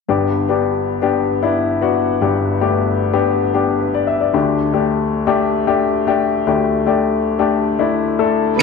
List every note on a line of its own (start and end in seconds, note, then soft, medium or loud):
0.09 2.18 G1 soft
0.09 2.18 G2 soft
0.09 0.45 B3 medium
0.09 0.45 D4 medium
0.09 0.45 G4 medium
0.49 0.97 B3 medium
0.49 0.97 D4 medium
0.49 0.97 G4 medium
1.02 1.38 B3 medium
1.02 1.38 D4 medium
1.02 1.38 G4 medium
1.42 1.78 B3 medium
1.42 1.78 D4 medium
1.42 1.78 E4 medium
1.81 2.17 B3 medium
1.81 2.18 D4 medium
1.81 2.18 F#4 medium
2.21 4.31 G1 soft
2.21 4.31 G2 medium
2.21 2.57 B3 medium
2.21 2.57 D4 medium
2.21 2.58 G4 medium
2.61 2.68 A3 soft
2.61 3.09 D4 medium
2.61 3.09 G4 medium
2.67 3.12 B3 medium
3.13 3.50 B3 medium
3.13 3.50 D4 medium
3.13 3.50 G4 medium
3.54 3.90 B3 medium
3.54 3.90 D4 medium
3.54 3.91 G4 medium
3.80 3.94 B4 soft
3.94 4.07 D5 soft
4.07 4.20 E5 medium
4.21 4.46 D5 soft
4.33 6.43 D2 medium
4.33 6.43 D3 medium
4.33 4.70 A3 medium
4.33 4.70 D4 medium
4.33 4.70 G4 medium
4.73 5.22 A3 medium
4.73 5.22 D4 medium
4.73 5.22 G4 medium
5.27 5.63 A3 medium
5.27 5.63 D4 medium
5.27 5.63 G4 medium
5.67 6.03 A3 medium
5.67 6.03 D4 medium
5.67 6.03 G4 medium
6.07 6.43 A3 medium
6.07 6.43 D4 medium
6.07 6.43 G4 medium
6.47 8.56 D2 soft
6.47 8.56 D3 medium
6.47 6.83 A3 medium
6.47 6.83 D4 medium
6.47 6.83 G4 medium
6.86 7.35 A3 medium
6.86 7.35 D4 medium
6.86 7.35 G4 medium
7.39 7.76 A3 medium
7.39 7.76 D4 medium
7.39 7.76 G4 medium
7.79 8.15 A3 medium
7.79 8.16 D4 medium
7.79 8.16 E4 medium
8.19 8.55 A3 medium
8.19 8.55 D4 medium
8.19 8.56 A4 medium
8.59 8.63 G2 soft
8.59 8.63 G3 medium
8.59 8.63 B3 medium
8.59 8.63 B4 medium